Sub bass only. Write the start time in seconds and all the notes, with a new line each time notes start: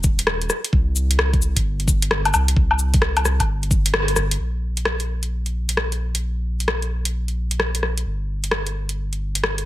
Already playing: D#1
0.73 C2
1.56 G1
2.34 C2
2.56 C2
3.40 G1
4.17 G1
4.39 A#1
8.06 G1